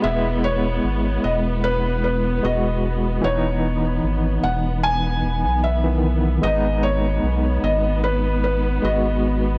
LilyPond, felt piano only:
\new Staff \with { instrumentName = "Felt piano" } { \time 4/4 \key gis \minor \tempo 4 = 75 e''8 cis''4 dis''8 b'8 b'8 dis''4 | cis''4. fis''8 gis''4 e''4 | dis''8 cis''4 dis''8 b'8 b'8 dis''4 | }